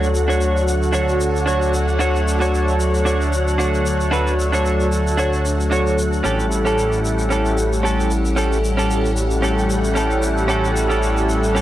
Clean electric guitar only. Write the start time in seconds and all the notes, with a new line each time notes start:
0.28 D4 F#4 C#5
0.92 D4 F#4 C#5
1.46 D4 F#4 C#5
1.99 D4 F#4 C#5
2.40 D4 F#4 C#5
3.05 D4 F#4 C#5
3.58 D4 F#4 C#5
4.11 D4 F#4 B4
4.52 D4 F#4 C#5
5.17 D4 F#4 C#5
5.71 D4 F#4 C#5
6.24 C#4 G4 A4
6.65 C#4 G4 A4
7.30 C#4 G4 A4
7.83 C#4 G4 A4
8.36 C#4 G4 A4
8.77 C#4 G4 A4
9.42 C#4 G4 A4
9.95 C#4 G4 A4
10.48 C#4 G4 A4
10.89 C#4 G4 A4
11.55 C#4 G4 A4